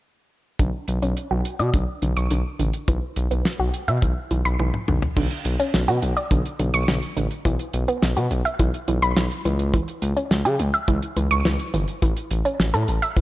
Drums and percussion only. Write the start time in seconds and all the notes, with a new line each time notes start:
0.59 kick, closed hi-hat
0.88 closed hi-hat
1.02 closed hi-hat
1.17 closed hi-hat
1.45 closed hi-hat
1.59 closed hi-hat
1.74 kick, closed hi-hat
2.02 closed hi-hat
2.16 closed hi-hat
2.31 closed hi-hat
2.60 closed hi-hat
2.73 closed hi-hat
2.88 kick, closed hi-hat
3.16 closed hi-hat
3.31 closed hi-hat
3.45 snare, closed hi-hat
3.74 closed hi-hat
3.88 closed hi-hat
4.02 kick, closed hi-hat
4.31 closed hi-hat
4.45 closed hi-hat
4.59 high tom
4.74 mid tom
4.88 mid tom
5.02 floor tom
5.17 kick, crash
5.31 closed hi-hat
5.45 closed hi-hat
5.60 closed hi-hat
5.74 snare
5.88 closed hi-hat
6.02 closed hi-hat
6.17 closed hi-hat
6.31 kick, closed hi-hat
6.46 closed hi-hat
6.59 closed hi-hat
6.74 closed hi-hat
6.88 snare
7.03 closed hi-hat
7.17 closed hi-hat
7.31 closed hi-hat
7.45 kick, closed hi-hat
7.59 closed hi-hat
7.73 closed hi-hat
7.88 closed hi-hat
8.03 snare
8.17 closed hi-hat
8.31 closed hi-hat
8.45 closed hi-hat
8.59 kick, closed hi-hat
8.74 closed hi-hat
8.88 closed hi-hat
9.02 closed hi-hat
9.17 snare
9.31 closed hi-hat
9.45 closed hi-hat
9.59 closed hi-hat
9.74 kick, closed hi-hat
9.88 closed hi-hat
10.02 closed hi-hat
10.17 closed hi-hat
10.31 snare
10.45 closed hi-hat
10.59 closed hi-hat
10.74 closed hi-hat
10.88 kick, closed hi-hat
11.02 closed hi-hat
11.16 closed hi-hat
11.31 closed hi-hat
11.45 snare
11.60 closed hi-hat
11.74 closed hi-hat
11.88 closed hi-hat
12.02 kick, closed hi-hat
12.17 closed hi-hat
12.31 closed hi-hat
12.45 closed hi-hat
12.60 snare
12.74 closed hi-hat
12.88 closed hi-hat
13.02 closed hi-hat
13.17 kick, closed hi-hat